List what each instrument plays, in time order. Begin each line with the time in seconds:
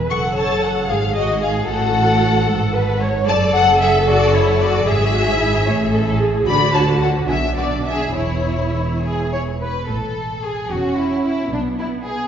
Already playing: double bass section E1, cello section E2, viola section B4
0.10 double bass section F#1, cello section F#2, viola section A4, violin section F#5 C#6
0.37 violin section C#5 A5
0.63 violin section A4 F#5
0.89 double bass section G#1, cello section G#2, viola section G#4, violin section G#4 F5
1.16 violin section F#4 D#5
1.42 violin section G#4 F5
1.68 double bass section A1, cello section A2, viola section F#4, violin section A4 F#5
2.46 double bass section G#1, cello section G#2, viola section A4
2.74 viola section B4
3.00 viola section C#5
3.27 double bass section F#1, cello section F#2, viola section A4, violin section D5 A5
3.53 violin section A4 F#5
3.81 violin section G#4 E5
4.07 violin section F#4 D5
4.34 violin section E4 C#5
4.61 violin section F#4 D5
4.86 double bass section G#1, cello section G#2, viola section G#4, violin section G#4 E5
5.13 viola section F#4
5.38 viola section E4
5.66 double bass section A1, cello section A2, viola section C#5
5.92 viola section A4
6.19 viola section G#4
6.46 double bass section D2, cello section D3, viola section F#4, violin section D5 B5
6.75 violin section C#5 A5
7.01 violin section A4 F#5
7.27 double bass section B1, cello section B2, viola section D4, violin section G#4 E5
7.57 violin section F#4 D5
7.86 violin section G#4 E5
8.14 double bass section E1, cello section E2, viola section E4, violin section E4 C#5
9.03 violin section G#4
9.33 violin section C#5
9.62 violin section B4
9.87 double bass section A1, cello section A2, violin section A4
10.43 violin section G#4 C#6
10.68 double bass section E1, cello section E2, viola section C#4, violin section F#4
10.97 violin section E4
11.23 violin section E4 C#6
11.49 double bass section B1, cello section B2, viola section B3, violin section D4
11.80 violin section E4
12.05 violin section G#4 G#5